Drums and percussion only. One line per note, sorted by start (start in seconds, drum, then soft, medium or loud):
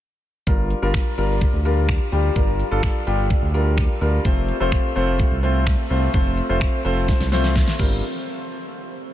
0.47 kick loud
0.47 closed hi-hat medium
0.71 closed hi-hat medium
0.94 finger snap loud
0.94 kick loud
0.94 closed hi-hat medium
1.18 closed hi-hat medium
1.41 kick loud
1.41 closed hi-hat medium
1.65 closed hi-hat medium
1.89 finger snap loud
1.89 kick loud
1.89 closed hi-hat medium
2.12 closed hi-hat soft
2.36 kick loud
2.36 closed hi-hat medium
2.60 closed hi-hat medium
2.83 finger snap loud
2.83 kick loud
2.83 closed hi-hat medium
3.07 closed hi-hat medium
3.30 kick loud
3.30 closed hi-hat medium
3.54 closed hi-hat soft
3.78 finger snap loud
3.78 kick loud
3.78 closed hi-hat medium
4.01 closed hi-hat soft
4.25 kick loud
4.25 closed hi-hat medium
4.49 closed hi-hat medium
4.72 finger snap loud
4.72 kick loud
4.72 closed hi-hat medium
4.96 closed hi-hat medium
5.19 kick loud
5.19 closed hi-hat medium
5.43 closed hi-hat medium
5.67 finger snap loud
5.67 kick loud
5.67 closed hi-hat medium
5.90 closed hi-hat soft
6.14 kick loud
6.14 closed hi-hat medium
6.38 closed hi-hat medium
6.61 finger snap loud
6.61 kick loud
6.61 closed hi-hat medium
6.85 closed hi-hat medium
7.08 kick loud
7.08 snare medium
7.08 closed hi-hat medium
7.20 snare medium
7.32 snare medium
7.32 closed hi-hat soft
7.44 snare medium
7.56 kick loud
7.56 snare medium
7.56 closed hi-hat medium
7.68 snare medium
7.79 kick loud
7.79 crash medium